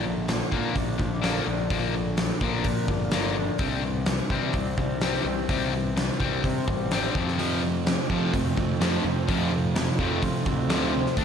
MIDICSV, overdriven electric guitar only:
0, 0, Header, 1, 2, 480
1, 0, Start_track
1, 0, Tempo, 473560
1, 1729, Time_signature, 4, 2, 24, 8
1, 11399, End_track
2, 0, Start_track
2, 0, Title_t, "Overdriven electric guitar"
2, 0, Program_c, 0, 29
2, 42, Note_on_c, 0, 46, 63
2, 44, Note_on_c, 0, 53, 71
2, 260, Note_off_c, 0, 46, 0
2, 261, Note_off_c, 0, 53, 0
2, 289, Note_on_c, 0, 46, 63
2, 297, Note_on_c, 0, 53, 76
2, 504, Note_off_c, 0, 46, 0
2, 508, Note_off_c, 0, 53, 0
2, 523, Note_on_c, 0, 46, 80
2, 529, Note_on_c, 0, 53, 87
2, 536, Note_on_c, 0, 58, 92
2, 745, Note_off_c, 0, 46, 0
2, 749, Note_off_c, 0, 53, 0
2, 757, Note_off_c, 0, 58, 0
2, 757, Note_on_c, 0, 46, 68
2, 762, Note_on_c, 0, 53, 80
2, 979, Note_off_c, 0, 46, 0
2, 981, Note_off_c, 0, 53, 0
2, 993, Note_on_c, 0, 46, 59
2, 999, Note_on_c, 0, 53, 71
2, 1217, Note_off_c, 0, 46, 0
2, 1220, Note_off_c, 0, 53, 0
2, 1234, Note_on_c, 0, 46, 84
2, 1241, Note_on_c, 0, 53, 82
2, 1241, Note_on_c, 0, 58, 91
2, 1467, Note_off_c, 0, 46, 0
2, 1471, Note_off_c, 0, 53, 0
2, 1471, Note_off_c, 0, 58, 0
2, 1484, Note_on_c, 0, 46, 62
2, 1486, Note_on_c, 0, 53, 75
2, 1703, Note_off_c, 0, 46, 0
2, 1704, Note_off_c, 0, 53, 0
2, 1728, Note_on_c, 0, 46, 84
2, 1733, Note_on_c, 0, 53, 81
2, 1741, Note_on_c, 0, 58, 90
2, 1955, Note_off_c, 0, 46, 0
2, 1957, Note_off_c, 0, 53, 0
2, 1961, Note_off_c, 0, 58, 0
2, 1971, Note_on_c, 0, 46, 62
2, 1972, Note_on_c, 0, 53, 63
2, 2187, Note_off_c, 0, 46, 0
2, 2187, Note_off_c, 0, 53, 0
2, 2207, Note_on_c, 0, 46, 66
2, 2211, Note_on_c, 0, 53, 77
2, 2425, Note_off_c, 0, 46, 0
2, 2427, Note_off_c, 0, 53, 0
2, 2448, Note_on_c, 0, 46, 79
2, 2458, Note_on_c, 0, 53, 89
2, 2463, Note_on_c, 0, 58, 93
2, 2675, Note_off_c, 0, 46, 0
2, 2680, Note_off_c, 0, 53, 0
2, 2683, Note_off_c, 0, 58, 0
2, 2695, Note_on_c, 0, 46, 68
2, 2703, Note_on_c, 0, 53, 72
2, 2909, Note_off_c, 0, 46, 0
2, 2913, Note_off_c, 0, 53, 0
2, 2926, Note_on_c, 0, 46, 67
2, 2928, Note_on_c, 0, 53, 66
2, 3145, Note_off_c, 0, 46, 0
2, 3146, Note_off_c, 0, 53, 0
2, 3159, Note_on_c, 0, 46, 79
2, 3165, Note_on_c, 0, 53, 80
2, 3169, Note_on_c, 0, 58, 88
2, 3382, Note_off_c, 0, 46, 0
2, 3389, Note_off_c, 0, 53, 0
2, 3394, Note_on_c, 0, 46, 68
2, 3396, Note_off_c, 0, 58, 0
2, 3402, Note_on_c, 0, 53, 73
2, 3619, Note_off_c, 0, 46, 0
2, 3623, Note_off_c, 0, 53, 0
2, 3639, Note_on_c, 0, 48, 85
2, 3647, Note_on_c, 0, 55, 82
2, 3648, Note_on_c, 0, 60, 86
2, 3868, Note_off_c, 0, 55, 0
2, 3871, Note_off_c, 0, 48, 0
2, 3875, Note_off_c, 0, 60, 0
2, 3880, Note_on_c, 0, 55, 75
2, 3881, Note_on_c, 0, 48, 67
2, 4102, Note_off_c, 0, 48, 0
2, 4102, Note_off_c, 0, 55, 0
2, 4120, Note_on_c, 0, 48, 77
2, 4123, Note_on_c, 0, 55, 84
2, 4342, Note_off_c, 0, 48, 0
2, 4343, Note_off_c, 0, 55, 0
2, 4369, Note_on_c, 0, 48, 82
2, 4372, Note_on_c, 0, 55, 94
2, 4379, Note_on_c, 0, 60, 90
2, 4596, Note_off_c, 0, 48, 0
2, 4597, Note_off_c, 0, 55, 0
2, 4600, Note_off_c, 0, 60, 0
2, 4610, Note_on_c, 0, 48, 77
2, 4611, Note_on_c, 0, 55, 76
2, 4826, Note_off_c, 0, 48, 0
2, 4827, Note_off_c, 0, 55, 0
2, 4846, Note_on_c, 0, 48, 62
2, 4853, Note_on_c, 0, 55, 70
2, 5064, Note_off_c, 0, 48, 0
2, 5068, Note_off_c, 0, 55, 0
2, 5088, Note_on_c, 0, 48, 83
2, 5090, Note_on_c, 0, 55, 82
2, 5099, Note_on_c, 0, 60, 94
2, 5315, Note_off_c, 0, 48, 0
2, 5316, Note_off_c, 0, 55, 0
2, 5320, Note_off_c, 0, 60, 0
2, 5327, Note_on_c, 0, 48, 68
2, 5335, Note_on_c, 0, 55, 74
2, 5545, Note_off_c, 0, 48, 0
2, 5548, Note_off_c, 0, 55, 0
2, 5566, Note_on_c, 0, 48, 85
2, 5573, Note_on_c, 0, 55, 92
2, 5580, Note_on_c, 0, 60, 87
2, 5793, Note_off_c, 0, 48, 0
2, 5797, Note_off_c, 0, 55, 0
2, 5801, Note_off_c, 0, 60, 0
2, 5812, Note_on_c, 0, 48, 74
2, 5813, Note_on_c, 0, 55, 81
2, 6027, Note_off_c, 0, 48, 0
2, 6027, Note_off_c, 0, 55, 0
2, 6047, Note_on_c, 0, 48, 72
2, 6050, Note_on_c, 0, 55, 76
2, 6264, Note_off_c, 0, 48, 0
2, 6266, Note_off_c, 0, 55, 0
2, 6282, Note_on_c, 0, 48, 80
2, 6289, Note_on_c, 0, 55, 87
2, 6294, Note_on_c, 0, 60, 88
2, 6511, Note_off_c, 0, 48, 0
2, 6515, Note_off_c, 0, 55, 0
2, 6517, Note_off_c, 0, 60, 0
2, 6531, Note_on_c, 0, 48, 67
2, 6533, Note_on_c, 0, 55, 73
2, 6746, Note_off_c, 0, 48, 0
2, 6747, Note_off_c, 0, 55, 0
2, 6768, Note_on_c, 0, 48, 59
2, 6774, Note_on_c, 0, 55, 70
2, 6984, Note_off_c, 0, 48, 0
2, 6987, Note_off_c, 0, 55, 0
2, 7012, Note_on_c, 0, 48, 84
2, 7019, Note_on_c, 0, 55, 74
2, 7023, Note_on_c, 0, 60, 84
2, 7236, Note_off_c, 0, 48, 0
2, 7239, Note_off_c, 0, 55, 0
2, 7241, Note_off_c, 0, 60, 0
2, 7244, Note_on_c, 0, 41, 86
2, 7255, Note_on_c, 0, 48, 84
2, 7255, Note_on_c, 0, 53, 91
2, 7471, Note_off_c, 0, 41, 0
2, 7477, Note_off_c, 0, 48, 0
2, 7477, Note_off_c, 0, 53, 0
2, 7492, Note_on_c, 0, 41, 82
2, 7500, Note_on_c, 0, 48, 77
2, 7501, Note_on_c, 0, 53, 95
2, 7715, Note_off_c, 0, 41, 0
2, 7719, Note_off_c, 0, 48, 0
2, 7720, Note_off_c, 0, 53, 0
2, 7737, Note_on_c, 0, 41, 60
2, 7737, Note_on_c, 0, 48, 66
2, 7948, Note_off_c, 0, 41, 0
2, 7948, Note_off_c, 0, 48, 0
2, 7975, Note_on_c, 0, 41, 67
2, 7977, Note_on_c, 0, 48, 82
2, 8187, Note_off_c, 0, 41, 0
2, 8188, Note_off_c, 0, 48, 0
2, 8208, Note_on_c, 0, 41, 85
2, 8216, Note_on_c, 0, 48, 90
2, 8222, Note_on_c, 0, 53, 88
2, 8433, Note_off_c, 0, 41, 0
2, 8437, Note_off_c, 0, 48, 0
2, 8440, Note_off_c, 0, 53, 0
2, 8453, Note_on_c, 0, 41, 70
2, 8459, Note_on_c, 0, 48, 78
2, 8666, Note_off_c, 0, 41, 0
2, 8669, Note_off_c, 0, 48, 0
2, 8682, Note_on_c, 0, 41, 62
2, 8688, Note_on_c, 0, 48, 68
2, 8900, Note_off_c, 0, 41, 0
2, 8903, Note_off_c, 0, 48, 0
2, 8926, Note_on_c, 0, 41, 81
2, 8932, Note_on_c, 0, 48, 81
2, 8937, Note_on_c, 0, 53, 83
2, 9152, Note_off_c, 0, 41, 0
2, 9155, Note_off_c, 0, 48, 0
2, 9157, Note_off_c, 0, 53, 0
2, 9168, Note_on_c, 0, 48, 68
2, 9170, Note_on_c, 0, 41, 65
2, 9383, Note_off_c, 0, 48, 0
2, 9384, Note_off_c, 0, 41, 0
2, 9401, Note_on_c, 0, 41, 78
2, 9406, Note_on_c, 0, 48, 83
2, 9413, Note_on_c, 0, 53, 90
2, 9629, Note_off_c, 0, 41, 0
2, 9632, Note_off_c, 0, 48, 0
2, 9635, Note_off_c, 0, 53, 0
2, 9644, Note_on_c, 0, 41, 67
2, 9654, Note_on_c, 0, 48, 72
2, 9861, Note_off_c, 0, 41, 0
2, 9866, Note_off_c, 0, 48, 0
2, 9888, Note_on_c, 0, 41, 69
2, 9888, Note_on_c, 0, 48, 86
2, 10103, Note_off_c, 0, 41, 0
2, 10103, Note_off_c, 0, 48, 0
2, 10126, Note_on_c, 0, 41, 87
2, 10131, Note_on_c, 0, 48, 99
2, 10137, Note_on_c, 0, 53, 100
2, 10351, Note_off_c, 0, 41, 0
2, 10354, Note_off_c, 0, 48, 0
2, 10357, Note_off_c, 0, 53, 0
2, 10366, Note_on_c, 0, 41, 75
2, 10373, Note_on_c, 0, 48, 78
2, 10582, Note_off_c, 0, 41, 0
2, 10586, Note_off_c, 0, 48, 0
2, 10605, Note_on_c, 0, 41, 64
2, 10612, Note_on_c, 0, 48, 75
2, 10821, Note_off_c, 0, 41, 0
2, 10825, Note_off_c, 0, 48, 0
2, 10839, Note_on_c, 0, 41, 84
2, 10846, Note_on_c, 0, 48, 78
2, 10848, Note_on_c, 0, 53, 94
2, 11068, Note_off_c, 0, 41, 0
2, 11072, Note_off_c, 0, 48, 0
2, 11073, Note_off_c, 0, 53, 0
2, 11085, Note_on_c, 0, 41, 67
2, 11087, Note_on_c, 0, 48, 80
2, 11302, Note_off_c, 0, 41, 0
2, 11303, Note_off_c, 0, 48, 0
2, 11321, Note_on_c, 0, 50, 84
2, 11326, Note_on_c, 0, 57, 97
2, 11331, Note_on_c, 0, 62, 92
2, 11399, Note_off_c, 0, 50, 0
2, 11399, Note_off_c, 0, 57, 0
2, 11399, Note_off_c, 0, 62, 0
2, 11399, End_track
0, 0, End_of_file